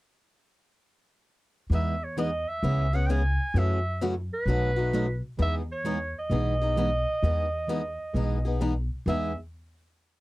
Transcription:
1.70 upright bass E2, steel-string acoustic guitar E3 G#3 B3 D#4 G#4
1.74 clarinet E5
2.04 clarinet C#5
2.17 steel-string acoustic guitar E3 G#3 B3 D#4 G#4, clarinet D#5
2.48 clarinet E5
2.63 upright bass C#2, steel-string acoustic guitar C#3 E3 G#3 B3 C#4 E4 G#4
2.93 steel-string acoustic guitar B3 C#4 G#4, clarinet F#5
3.06 steel-string acoustic guitar C#3 E3 G#3 B3 E4 G#4, clarinet G5 G#5
3.10 steel-string acoustic guitar C#4
3.54 upright bass F#2, steel-string acoustic guitar C#3 E3 F#3 A3 C#4 E4 F#4 C#5
3.58 clarinet E5
4.01 steel-string acoustic guitar C#3 E3 F#3 A3 C#4 E4 F#4 C#5
4.34 clarinet B4
4.46 upright bass B1, steel-string acoustic guitar B2 F#3 A3 D#4 F#4 B4
4.76 steel-string acoustic guitar A3 D#4 F#4
4.92 steel-string acoustic guitar B2 F#3 A3 D#4 F#4 B4
5.37 upright bass E2, steel-string acoustic guitar E3 G#3 B3 D#4 G#4
5.42 clarinet E5
5.72 clarinet C#5
5.84 steel-string acoustic guitar E3 G#3 B3 D#4 G#4
6.19 clarinet D#5
6.30 upright bass B1, steel-string acoustic guitar E3 G#3 B3 D#4 G#4
6.61 steel-string acoustic guitar B3 D#4 G#4
6.76 steel-string acoustic guitar E3 G#3 B3 D#4 G#4
7.23 upright bass E2, steel-string acoustic guitar E3 G#3 B3 D#4 G#4
7.67 steel-string acoustic guitar E3 G#3 B3 D#4 G#4
8.13 upright bass B1, steel-string acoustic guitar E3 G#3 B3 D#4 G#4
8.45 steel-string acoustic guitar B3 D#4 G#4
8.60 steel-string acoustic guitar E3 G#3 B3 D#4 G#4
9.06 upright bass E2, steel-string acoustic guitar E3 G#3 B3 D#4 G#4, clarinet E5

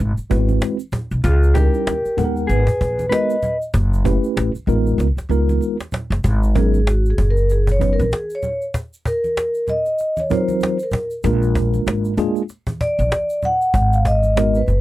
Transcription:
0.00 upright bass G#1
0.17 muted upright bass stroke, cajon slap, shaker
0.30 upright bass G#1, tine electric piano G#3 B3 E4 F#4 B4, cajon bass, shaker
0.37 tine electric piano C4
0.49 high conga, shaker
0.61 cajon slap, shaker
0.79 shaker
0.92 cajon bass, low conga, shaker
1.11 upright bass B1, shaker
1.24 upright bass C#2, clean electric guitar F4, vibraphone G#4, cajon bass, shaker
1.43 shaker
1.54 tine electric piano G3 C#4 D#4 E4 A#4, clean electric guitar G4, vibraphone A#4, cajon bass, shaker
1.74 shaker
1.87 upright bass D#2, cajon slap, shaker
2.05 muted upright bass stroke, shaker
2.17 upright bass D#2, tine electric piano G#3 B3 D#4 A4 F#5, cajon bass, low conga, shaker
2.24 tine electric piano A#4
2.36 cajon slap, shaker
2.47 upright bass G#1, clean electric guitar G#4, vibraphone B4, cajon slap, shaker
2.67 muted upright bass stroke, cajon bass, shaker
2.81 upright bass A#1, cajon bass, shaker
2.99 high conga, shaker
3.09 tine electric piano G#3 B3 D#4 F#4 A#4, clean electric guitar B4, vibraphone D#5, cajon slap, shaker
3.30 shaker
3.43 cajon slap, low conga, shaker
3.62 shaker
3.74 upright bass F#1, cajon bass, shaker
3.93 shaker
4.04 tine electric piano A3 C#4 E4 G4 B4, cajon bass, shaker
4.24 shaker
4.37 upright bass A1, cajon slap, shaker
4.55 muted upright bass stroke, shaker
4.66 upright bass A1, tine electric piano G#3 B3 D#4 F4 A#4, cajon slap, low conga, shaker
4.85 cajon slap, shaker
4.98 upright bass C#2, cajon slap, shaker
5.17 muted upright bass stroke, cajon slap, shaker
5.29 upright bass C#2, tine electric piano G#3 B3 D#4 F4 A#4, cajon slap, shaker
5.49 high conga, shaker
5.61 cajon slap, shaker
5.80 cajon slap, shaker
5.92 cajon slap, low conga, shaker
6.10 upright bass F#1, cajon slap, shaker
6.24 upright bass G#1, cajon bass, shaker
6.43 shaker
6.55 tine electric piano F#3 B3 C#4 D#4 A#4, vibraphone G#4, cajon bass, shaker
6.74 high conga, shaker
6.87 vibraphone F#4, cajon slap, shaker
7.06 shaker
7.10 vibraphone G#4
7.18 upright bass F#1, cajon bass, low conga, shaker
7.30 vibraphone A#4
7.36 cajon slap, shaker
7.50 vibraphone G#4, cajon slap, shaker
7.67 cajon bass, high conga, shaker
7.72 vibraphone C#5
7.79 tine electric piano F#3 B3 C#4 D#4 B4, cajon bass, shaker
7.93 vibraphone A#4
7.99 upright bass A#1, high conga, shaker
8.12 vibraphone G#4, cajon slap, high conga, shaker
8.30 shaker
8.35 vibraphone C#5
8.43 cajon slap, low conga, shaker
8.62 shaker
8.74 cajon bass, shaker
8.93 shaker
9.05 vibraphone A#4, cajon bass, shaker
9.24 high conga, shaker
9.37 cajon slap, shaker
9.54 shaker
9.67 vibraphone D#5, cajon slap, low conga, shaker
9.86 cajon slap, shaker
9.98 cajon slap, shaker
10.17 vibraphone C#5, cajon slap, high conga, shaker
10.30 tine electric piano F#3 C4 D#4 F4 A#4, vibraphone C5, cajon bass, shaker
10.48 high conga, shaker
10.61 cajon slap, high conga, shaker
10.79 shaker
10.83 vibraphone A#4
10.91 cajon bass, low conga, shaker
11.10 shaker
11.24 upright bass A#1, tine electric piano G#3 A#3 D4 F4 A#4, cajon bass, shaker
11.42 shaker
11.55 cajon bass, shaker
11.74 high conga, shaker
11.87 upright bass G#1, cajon slap, shaker
12.05 shaker
12.17 tine electric piano G#3 A#3 D4 F4 G#4, cajon bass, low conga, shaker
12.35 cajon slap, shaker
12.49 cajon slap, shaker
12.67 cajon bass, high conga, shaker
12.81 vibraphone D5, cajon bass, shaker
12.99 upright bass A#1, high conga, shaker
13.12 cajon slap, high conga, shaker
13.30 shaker
13.43 vibraphone F#5, cajon slap, low conga, shaker
13.61 shaker
13.74 upright bass G#1, cajon bass, shaker
13.93 vibraphone F5, shaker
14.05 vibraphone D#5, cajon bass, shaker
14.23 high conga, shaker
14.36 tine electric piano G#3 B3 D#4 F#4 A#4, cajon slap, low conga, shaker
14.55 vibraphone B4, shaker
14.66 upright bass F#1, cajon slap, low conga, shaker

